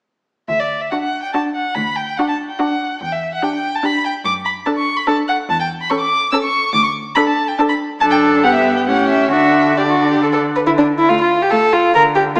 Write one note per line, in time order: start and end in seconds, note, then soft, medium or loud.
0.48 0.83 D2 soft
0.48 0.61 E5 medium
0.59 0.82 D5 soft
0.81 0.90 E5 soft
0.91 1.24 D4 soft
0.91 1.24 F#4 soft
0.91 0.95 F#5 soft
1.03 1.22 F#5 soft
1.22 1.33 G5 soft
1.33 1.66 D4 soft
1.33 1.66 F#4 soft
1.33 1.41 A5 soft
1.55 1.76 F#5 soft
1.75 2.09 D2 soft
1.75 1.97 B5 medium
1.96 2.19 G5 soft
2.17 2.50 D4 soft
2.17 2.50 F#4 soft
2.17 2.28 F#5 soft
2.28 2.36 A5 soft
2.48 2.60 G5 soft
2.59 2.91 D4 soft
2.59 2.90 F#4 soft
2.59 3.00 F#5 soft
3.01 3.34 E2 soft
3.01 3.13 G5 medium
3.12 3.32 E5 soft
3.34 3.45 F#5 soft
3.43 3.74 D4 soft
3.43 3.74 G4 soft
3.43 3.54 G5 medium
3.55 3.77 G5 soft
3.75 3.86 A5 soft
3.83 4.14 D4 soft
3.83 4.15 G4 soft
3.83 4.05 B5 medium
4.05 4.13 G5 soft
4.25 4.58 F#2 medium
4.25 4.33 D6 medium
4.45 4.53 B5 medium
4.66 4.97 D4 soft
4.66 4.97 A4 soft
4.66 4.70 A5 medium
4.77 4.98 C#6 medium
4.97 5.07 B5 soft
5.07 5.39 D4 soft
5.07 5.39 A4 soft
5.07 5.16 A5 medium
5.28 5.36 F#5 medium
5.49 5.82 E2 medium
5.49 5.59 A5 medium
5.60 5.68 G5 medium
5.81 5.91 B5 medium
5.90 6.22 C#4 soft
5.90 6.22 A4 medium
5.90 6.00 C#6 medium
6.00 6.31 D6 medium
6.31 6.64 C#4 medium
6.31 6.64 A4 soft
6.31 6.36 E6 medium
6.42 6.73 C#6 medium
6.73 7.07 D2 medium
6.73 6.83 D6 medium
6.84 6.92 C#6 medium
7.15 7.48 D4 soft
7.15 7.48 A4 medium
7.15 7.20 B5 medium
7.27 7.50 A5 medium
7.48 7.57 G5 medium
7.58 7.90 D4 medium
7.58 7.90 A4 soft
7.58 7.62 A5 medium
7.69 7.73 B5 medium
8.01 8.45 F#2 soft
8.01 8.46 D4 soft
8.01 8.45 A4 soft
8.01 8.05 A5 medium
8.11 8.19 G5 medium
8.43 8.89 G2 soft
8.43 8.89 B3 soft
8.43 8.87 G4 soft
8.43 8.54 F#5 medium
8.55 8.76 E5 soft
8.76 8.81 G5 soft
8.87 9.32 A2 soft
8.87 9.34 C#4 soft
8.87 9.31 G4 soft
8.87 9.09 F#5 medium
9.10 9.31 E5 medium
9.31 10.44 D3 soft
9.31 9.78 D4 soft
9.31 9.77 F#4 soft
9.31 9.79 E5 medium
9.77 10.45 D4 soft
9.77 9.82 G4 soft
9.77 10.44 D5 soft
9.90 10.10 F#4 soft
10.11 10.22 G4 soft
10.22 10.27 A4 soft
10.33 10.41 A4 soft
10.56 10.60 B4 soft
10.66 11.02 D3 soft
10.66 10.71 E4 medium
10.78 10.86 D4 soft
10.98 11.10 E4 soft
11.09 11.18 A3 soft
11.09 11.20 F4 medium
11.09 11.18 F5 soft
11.21 11.44 F4 soft
11.42 11.52 G4 soft
11.51 11.60 A3 soft
11.51 11.75 A4 soft
11.51 11.59 F5 soft
11.73 11.94 F4 medium
11.93 12.29 D3 soft
11.93 12.03 A#4 medium
12.15 12.23 G4 medium
12.36 12.40 A#3 soft
12.36 12.40 F4 soft
12.36 12.40 F5 soft